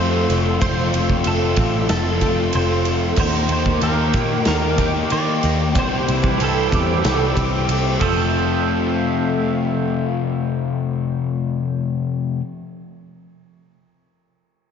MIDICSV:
0, 0, Header, 1, 8, 480
1, 0, Start_track
1, 0, Key_signature, -1, "major"
1, 0, Tempo, 643087
1, 455, Time_signature, 4, 2, 24, 8
1, 10983, End_track
2, 0, Start_track
2, 0, Title_t, "Analog synth pad"
2, 0, Program_c, 0, 89
2, 0, Note_on_c, 0, 69, 85
2, 0, Note_on_c, 0, 77, 72
2, 0, Note_on_c, 0, 84, 76
2, 0, Note_on_c, 0, 88, 88
2, 2339, Note_off_c, 0, 88, 0
2, 2347, Note_off_c, 0, 77, 0
2, 2347, Note_off_c, 0, 84, 0
2, 2348, Note_off_c, 0, 69, 0
2, 2388, Note_on_c, 0, 70, 83
2, 2395, Note_on_c, 0, 86, 73
2, 2401, Note_on_c, 0, 79, 83
2, 4281, Note_off_c, 0, 70, 0
2, 4309, Note_on_c, 0, 72, 89
2, 4309, Note_on_c, 0, 88, 91
2, 5954, Note_off_c, 0, 86, 0
2, 5957, Note_off_c, 0, 79, 0
2, 5964, Note_off_c, 0, 88, 0
2, 5965, Note_off_c, 0, 72, 0
2, 5991, Note_on_c, 0, 76, 75
2, 5997, Note_on_c, 0, 60, 87
2, 6000, Note_on_c, 0, 69, 76
2, 6000, Note_on_c, 0, 77, 93
2, 8711, Note_off_c, 0, 76, 0
2, 8714, Note_off_c, 0, 60, 0
2, 8715, Note_off_c, 0, 69, 0
2, 8715, Note_off_c, 0, 77, 0
2, 10983, End_track
3, 0, Start_track
3, 0, Title_t, "Clean electric guitar"
3, 0, Program_c, 1, 27
3, 0, Note_on_c, 1, 72, 94
3, 309, Note_off_c, 1, 72, 0
3, 461, Note_on_c, 1, 72, 99
3, 946, Note_off_c, 1, 72, 0
3, 949, Note_on_c, 1, 69, 89
3, 1408, Note_off_c, 1, 69, 0
3, 1417, Note_on_c, 1, 69, 98
3, 1903, Note_off_c, 1, 69, 0
3, 1906, Note_on_c, 1, 72, 100
3, 2235, Note_off_c, 1, 72, 0
3, 2386, Note_on_c, 1, 72, 109
3, 2620, Note_off_c, 1, 72, 0
3, 2629, Note_on_c, 1, 72, 88
3, 2855, Note_off_c, 1, 72, 0
3, 2858, Note_on_c, 1, 70, 99
3, 3332, Note_off_c, 1, 70, 0
3, 3341, Note_on_c, 1, 70, 103
3, 3819, Note_off_c, 1, 70, 0
3, 3822, Note_on_c, 1, 74, 106
3, 4153, Note_off_c, 1, 74, 0
3, 4320, Note_on_c, 1, 72, 109
3, 4801, Note_off_c, 1, 72, 0
3, 4805, Note_on_c, 1, 69, 98
3, 5035, Note_on_c, 1, 67, 81
3, 5036, Note_off_c, 1, 69, 0
3, 5954, Note_off_c, 1, 67, 0
3, 5983, Note_on_c, 1, 69, 83
3, 9229, Note_off_c, 1, 69, 0
3, 10983, End_track
4, 0, Start_track
4, 0, Title_t, "Twelve-string acoustic guitar"
4, 0, Program_c, 2, 25
4, 0, Note_on_c, 2, 69, 80
4, 0, Note_on_c, 2, 72, 98
4, 213, Note_off_c, 2, 69, 0
4, 222, Note_on_c, 2, 69, 85
4, 453, Note_off_c, 2, 69, 0
4, 456, Note_off_c, 2, 72, 0
4, 456, Note_on_c, 2, 72, 106
4, 935, Note_off_c, 2, 72, 0
4, 943, Note_on_c, 2, 69, 82
4, 1178, Note_off_c, 2, 69, 0
4, 1178, Note_on_c, 2, 67, 80
4, 1416, Note_off_c, 2, 67, 0
4, 1423, Note_on_c, 2, 69, 89
4, 1657, Note_on_c, 2, 67, 79
4, 1659, Note_off_c, 2, 69, 0
4, 1895, Note_off_c, 2, 67, 0
4, 1896, Note_on_c, 2, 69, 81
4, 2127, Note_off_c, 2, 69, 0
4, 2136, Note_on_c, 2, 69, 87
4, 2375, Note_off_c, 2, 69, 0
4, 2378, Note_on_c, 2, 70, 98
4, 2855, Note_off_c, 2, 70, 0
4, 2860, Note_on_c, 2, 81, 80
4, 3097, Note_off_c, 2, 81, 0
4, 3105, Note_on_c, 2, 67, 78
4, 3346, Note_on_c, 2, 81, 91
4, 3368, Note_off_c, 2, 67, 0
4, 3579, Note_off_c, 2, 81, 0
4, 3580, Note_on_c, 2, 67, 78
4, 3817, Note_off_c, 2, 67, 0
4, 3828, Note_on_c, 2, 70, 85
4, 4050, Note_off_c, 2, 70, 0
4, 4059, Note_on_c, 2, 70, 81
4, 4296, Note_off_c, 2, 70, 0
4, 4300, Note_on_c, 2, 72, 95
4, 4776, Note_off_c, 2, 72, 0
4, 4783, Note_on_c, 2, 69, 92
4, 5018, Note_off_c, 2, 69, 0
4, 5029, Note_on_c, 2, 67, 84
4, 5261, Note_off_c, 2, 67, 0
4, 5273, Note_on_c, 2, 69, 95
4, 5503, Note_off_c, 2, 69, 0
4, 5513, Note_on_c, 2, 67, 77
4, 5743, Note_off_c, 2, 67, 0
4, 5750, Note_on_c, 2, 69, 78
4, 5982, Note_off_c, 2, 69, 0
4, 5994, Note_on_c, 2, 65, 86
4, 6837, Note_off_c, 2, 65, 0
4, 10983, End_track
5, 0, Start_track
5, 0, Title_t, "Overdriven electric guitar"
5, 0, Program_c, 3, 29
5, 0, Note_on_c, 3, 53, 77
5, 0, Note_on_c, 3, 57, 72
5, 0, Note_on_c, 3, 60, 89
5, 0, Note_on_c, 3, 65, 85
5, 455, Note_off_c, 3, 53, 0
5, 457, Note_off_c, 3, 57, 0
5, 457, Note_on_c, 3, 41, 96
5, 463, Note_on_c, 3, 48, 90
5, 464, Note_off_c, 3, 60, 0
5, 464, Note_on_c, 3, 53, 95
5, 465, Note_off_c, 3, 65, 0
5, 466, Note_on_c, 3, 57, 97
5, 473, Note_on_c, 3, 60, 112
5, 474, Note_on_c, 3, 65, 104
5, 927, Note_off_c, 3, 53, 0
5, 932, Note_off_c, 3, 57, 0
5, 936, Note_on_c, 3, 53, 77
5, 940, Note_off_c, 3, 65, 0
5, 941, Note_off_c, 3, 60, 0
5, 941, Note_on_c, 3, 57, 82
5, 949, Note_on_c, 3, 65, 82
5, 950, Note_on_c, 3, 60, 79
5, 1175, Note_off_c, 3, 41, 0
5, 1178, Note_off_c, 3, 48, 0
5, 1420, Note_off_c, 3, 53, 0
5, 1423, Note_off_c, 3, 57, 0
5, 1423, Note_on_c, 3, 48, 101
5, 1425, Note_off_c, 3, 60, 0
5, 1425, Note_on_c, 3, 41, 103
5, 1429, Note_on_c, 3, 53, 110
5, 1431, Note_off_c, 3, 65, 0
5, 1432, Note_on_c, 3, 57, 114
5, 1434, Note_on_c, 3, 60, 103
5, 1440, Note_on_c, 3, 65, 114
5, 1655, Note_off_c, 3, 65, 0
5, 1661, Note_off_c, 3, 60, 0
5, 1664, Note_on_c, 3, 65, 81
5, 1666, Note_off_c, 3, 57, 0
5, 1670, Note_on_c, 3, 60, 79
5, 1672, Note_off_c, 3, 53, 0
5, 1675, Note_on_c, 3, 57, 70
5, 1681, Note_on_c, 3, 53, 68
5, 1885, Note_off_c, 3, 53, 0
5, 1893, Note_off_c, 3, 57, 0
5, 1894, Note_on_c, 3, 53, 75
5, 1898, Note_off_c, 3, 48, 0
5, 1899, Note_off_c, 3, 41, 0
5, 1899, Note_off_c, 3, 60, 0
5, 1900, Note_off_c, 3, 65, 0
5, 1902, Note_on_c, 3, 57, 76
5, 1908, Note_on_c, 3, 60, 80
5, 1909, Note_on_c, 3, 65, 92
5, 2359, Note_off_c, 3, 53, 0
5, 2363, Note_off_c, 3, 57, 0
5, 2366, Note_off_c, 3, 60, 0
5, 2367, Note_off_c, 3, 65, 0
5, 2368, Note_on_c, 3, 51, 96
5, 2373, Note_on_c, 3, 58, 111
5, 2383, Note_on_c, 3, 63, 107
5, 2387, Note_on_c, 3, 67, 105
5, 2839, Note_off_c, 3, 51, 0
5, 2843, Note_off_c, 3, 58, 0
5, 2848, Note_on_c, 3, 51, 74
5, 2849, Note_off_c, 3, 63, 0
5, 2852, Note_on_c, 3, 58, 85
5, 2858, Note_on_c, 3, 63, 83
5, 2862, Note_off_c, 3, 67, 0
5, 2865, Note_on_c, 3, 67, 94
5, 3320, Note_off_c, 3, 51, 0
5, 3329, Note_off_c, 3, 58, 0
5, 3329, Note_on_c, 3, 51, 107
5, 3333, Note_off_c, 3, 67, 0
5, 3335, Note_off_c, 3, 63, 0
5, 3338, Note_on_c, 3, 58, 104
5, 3342, Note_on_c, 3, 67, 120
5, 3344, Note_on_c, 3, 63, 104
5, 3561, Note_off_c, 3, 67, 0
5, 3567, Note_off_c, 3, 63, 0
5, 3570, Note_on_c, 3, 67, 88
5, 3576, Note_on_c, 3, 63, 77
5, 3580, Note_off_c, 3, 58, 0
5, 3589, Note_on_c, 3, 58, 68
5, 3797, Note_off_c, 3, 51, 0
5, 3806, Note_on_c, 3, 51, 72
5, 3807, Note_off_c, 3, 58, 0
5, 3813, Note_off_c, 3, 63, 0
5, 3814, Note_off_c, 3, 67, 0
5, 3816, Note_on_c, 3, 58, 76
5, 3822, Note_on_c, 3, 63, 74
5, 3823, Note_on_c, 3, 67, 82
5, 4275, Note_off_c, 3, 51, 0
5, 4277, Note_on_c, 3, 48, 93
5, 4280, Note_off_c, 3, 58, 0
5, 4283, Note_off_c, 3, 63, 0
5, 4283, Note_on_c, 3, 52, 98
5, 4284, Note_off_c, 3, 67, 0
5, 4288, Note_on_c, 3, 55, 113
5, 4292, Note_on_c, 3, 60, 107
5, 4297, Note_on_c, 3, 67, 99
5, 4747, Note_off_c, 3, 52, 0
5, 4754, Note_off_c, 3, 55, 0
5, 4756, Note_on_c, 3, 52, 82
5, 4761, Note_off_c, 3, 60, 0
5, 4763, Note_on_c, 3, 55, 81
5, 4765, Note_off_c, 3, 67, 0
5, 4770, Note_on_c, 3, 60, 89
5, 4774, Note_on_c, 3, 67, 83
5, 5005, Note_off_c, 3, 48, 0
5, 5241, Note_off_c, 3, 52, 0
5, 5244, Note_on_c, 3, 48, 106
5, 5248, Note_off_c, 3, 60, 0
5, 5250, Note_on_c, 3, 52, 97
5, 5251, Note_off_c, 3, 55, 0
5, 5257, Note_on_c, 3, 60, 104
5, 5258, Note_off_c, 3, 67, 0
5, 5260, Note_on_c, 3, 55, 110
5, 5267, Note_on_c, 3, 67, 115
5, 5478, Note_off_c, 3, 67, 0
5, 5487, Note_on_c, 3, 67, 78
5, 5488, Note_off_c, 3, 60, 0
5, 5496, Note_off_c, 3, 55, 0
5, 5497, Note_on_c, 3, 60, 77
5, 5505, Note_on_c, 3, 55, 68
5, 5729, Note_off_c, 3, 48, 0
5, 5732, Note_off_c, 3, 52, 0
5, 5736, Note_off_c, 3, 55, 0
5, 5737, Note_off_c, 3, 60, 0
5, 5739, Note_on_c, 3, 52, 73
5, 5745, Note_on_c, 3, 55, 82
5, 5746, Note_on_c, 3, 60, 83
5, 5751, Note_off_c, 3, 67, 0
5, 5760, Note_on_c, 3, 67, 83
5, 5966, Note_on_c, 3, 41, 91
5, 5975, Note_off_c, 3, 52, 0
5, 5975, Note_on_c, 3, 48, 112
5, 5977, Note_off_c, 3, 60, 0
5, 5978, Note_on_c, 3, 53, 100
5, 5979, Note_off_c, 3, 55, 0
5, 5986, Note_off_c, 3, 67, 0
5, 5986, Note_on_c, 3, 57, 120
5, 5986, Note_on_c, 3, 60, 99
5, 5997, Note_on_c, 3, 65, 112
5, 9250, Note_off_c, 3, 41, 0
5, 9255, Note_off_c, 3, 48, 0
5, 9257, Note_off_c, 3, 53, 0
5, 9261, Note_off_c, 3, 57, 0
5, 9261, Note_off_c, 3, 60, 0
5, 9266, Note_off_c, 3, 65, 0
5, 10983, End_track
6, 0, Start_track
6, 0, Title_t, "Clean electric guitar"
6, 0, Program_c, 4, 27
6, 0, Note_on_c, 4, 53, 75
6, 0, Note_on_c, 4, 57, 79
6, 0, Note_on_c, 4, 60, 79
6, 2365, Note_off_c, 4, 53, 0
6, 2373, Note_off_c, 4, 57, 0
6, 2381, Note_off_c, 4, 60, 0
6, 10983, End_track
7, 0, Start_track
7, 0, Title_t, "Picked electric bass"
7, 0, Program_c, 5, 34
7, 0, Note_on_c, 5, 41, 94
7, 191, Note_off_c, 5, 41, 0
7, 217, Note_on_c, 5, 29, 79
7, 429, Note_off_c, 5, 29, 0
7, 461, Note_on_c, 5, 29, 103
7, 671, Note_off_c, 5, 29, 0
7, 697, Note_on_c, 5, 29, 90
7, 909, Note_off_c, 5, 29, 0
7, 939, Note_on_c, 5, 29, 99
7, 1150, Note_off_c, 5, 29, 0
7, 1175, Note_on_c, 5, 33, 95
7, 1388, Note_off_c, 5, 33, 0
7, 1417, Note_on_c, 5, 29, 100
7, 1629, Note_off_c, 5, 29, 0
7, 1659, Note_on_c, 5, 29, 83
7, 1870, Note_off_c, 5, 29, 0
7, 1901, Note_on_c, 5, 29, 98
7, 2324, Note_off_c, 5, 29, 0
7, 2373, Note_on_c, 5, 39, 99
7, 2586, Note_off_c, 5, 39, 0
7, 2603, Note_on_c, 5, 39, 88
7, 2821, Note_off_c, 5, 39, 0
7, 2850, Note_on_c, 5, 39, 93
7, 3065, Note_off_c, 5, 39, 0
7, 3092, Note_on_c, 5, 46, 95
7, 3306, Note_off_c, 5, 46, 0
7, 3334, Note_on_c, 5, 39, 90
7, 3760, Note_off_c, 5, 39, 0
7, 3822, Note_on_c, 5, 51, 94
7, 4031, Note_off_c, 5, 51, 0
7, 4056, Note_on_c, 5, 39, 82
7, 4298, Note_off_c, 5, 39, 0
7, 4298, Note_on_c, 5, 36, 103
7, 4509, Note_off_c, 5, 36, 0
7, 4541, Note_on_c, 5, 36, 85
7, 4751, Note_off_c, 5, 36, 0
7, 4781, Note_on_c, 5, 36, 97
7, 4990, Note_off_c, 5, 36, 0
7, 5016, Note_on_c, 5, 40, 90
7, 5228, Note_off_c, 5, 40, 0
7, 5260, Note_on_c, 5, 36, 99
7, 5470, Note_off_c, 5, 36, 0
7, 5500, Note_on_c, 5, 36, 89
7, 5710, Note_off_c, 5, 36, 0
7, 5733, Note_on_c, 5, 36, 95
7, 5946, Note_off_c, 5, 36, 0
7, 5980, Note_on_c, 5, 29, 90
7, 9228, Note_off_c, 5, 29, 0
7, 10983, End_track
8, 0, Start_track
8, 0, Title_t, "Drums"
8, 222, Note_on_c, 9, 51, 73
8, 226, Note_on_c, 9, 38, 34
8, 297, Note_off_c, 9, 51, 0
8, 301, Note_off_c, 9, 38, 0
8, 460, Note_on_c, 9, 36, 122
8, 462, Note_on_c, 9, 51, 109
8, 534, Note_off_c, 9, 36, 0
8, 536, Note_off_c, 9, 51, 0
8, 700, Note_on_c, 9, 51, 86
8, 775, Note_off_c, 9, 51, 0
8, 817, Note_on_c, 9, 36, 90
8, 892, Note_off_c, 9, 36, 0
8, 927, Note_on_c, 9, 51, 111
8, 1001, Note_off_c, 9, 51, 0
8, 1167, Note_on_c, 9, 51, 87
8, 1173, Note_on_c, 9, 36, 101
8, 1242, Note_off_c, 9, 51, 0
8, 1248, Note_off_c, 9, 36, 0
8, 1411, Note_on_c, 9, 51, 115
8, 1414, Note_on_c, 9, 38, 114
8, 1485, Note_off_c, 9, 51, 0
8, 1489, Note_off_c, 9, 38, 0
8, 1651, Note_on_c, 9, 51, 87
8, 1654, Note_on_c, 9, 36, 81
8, 1725, Note_off_c, 9, 51, 0
8, 1729, Note_off_c, 9, 36, 0
8, 1886, Note_on_c, 9, 51, 118
8, 1961, Note_off_c, 9, 51, 0
8, 2129, Note_on_c, 9, 51, 82
8, 2133, Note_on_c, 9, 38, 32
8, 2204, Note_off_c, 9, 51, 0
8, 2207, Note_off_c, 9, 38, 0
8, 2361, Note_on_c, 9, 49, 114
8, 2369, Note_on_c, 9, 36, 121
8, 2435, Note_off_c, 9, 49, 0
8, 2444, Note_off_c, 9, 36, 0
8, 2604, Note_on_c, 9, 51, 84
8, 2679, Note_off_c, 9, 51, 0
8, 2731, Note_on_c, 9, 36, 89
8, 2805, Note_off_c, 9, 36, 0
8, 2846, Note_on_c, 9, 51, 107
8, 2921, Note_off_c, 9, 51, 0
8, 3086, Note_on_c, 9, 51, 87
8, 3090, Note_on_c, 9, 36, 95
8, 3161, Note_off_c, 9, 51, 0
8, 3165, Note_off_c, 9, 36, 0
8, 3323, Note_on_c, 9, 51, 104
8, 3327, Note_on_c, 9, 38, 117
8, 3398, Note_off_c, 9, 51, 0
8, 3402, Note_off_c, 9, 38, 0
8, 3569, Note_on_c, 9, 36, 88
8, 3569, Note_on_c, 9, 51, 77
8, 3644, Note_off_c, 9, 36, 0
8, 3644, Note_off_c, 9, 51, 0
8, 3808, Note_on_c, 9, 51, 100
8, 3883, Note_off_c, 9, 51, 0
8, 4052, Note_on_c, 9, 51, 75
8, 4056, Note_on_c, 9, 38, 34
8, 4126, Note_off_c, 9, 51, 0
8, 4130, Note_off_c, 9, 38, 0
8, 4293, Note_on_c, 9, 51, 104
8, 4295, Note_on_c, 9, 36, 120
8, 4368, Note_off_c, 9, 51, 0
8, 4370, Note_off_c, 9, 36, 0
8, 4542, Note_on_c, 9, 51, 77
8, 4616, Note_off_c, 9, 51, 0
8, 4655, Note_on_c, 9, 36, 96
8, 4730, Note_off_c, 9, 36, 0
8, 4777, Note_on_c, 9, 51, 103
8, 4851, Note_off_c, 9, 51, 0
8, 5019, Note_on_c, 9, 36, 97
8, 5025, Note_on_c, 9, 51, 87
8, 5093, Note_off_c, 9, 36, 0
8, 5099, Note_off_c, 9, 51, 0
8, 5258, Note_on_c, 9, 51, 104
8, 5262, Note_on_c, 9, 38, 116
8, 5333, Note_off_c, 9, 51, 0
8, 5337, Note_off_c, 9, 38, 0
8, 5499, Note_on_c, 9, 36, 87
8, 5501, Note_on_c, 9, 51, 83
8, 5574, Note_off_c, 9, 36, 0
8, 5576, Note_off_c, 9, 51, 0
8, 5738, Note_on_c, 9, 51, 119
8, 5813, Note_off_c, 9, 51, 0
8, 5977, Note_on_c, 9, 57, 87
8, 5979, Note_on_c, 9, 36, 107
8, 6052, Note_off_c, 9, 57, 0
8, 6054, Note_off_c, 9, 36, 0
8, 10983, End_track
0, 0, End_of_file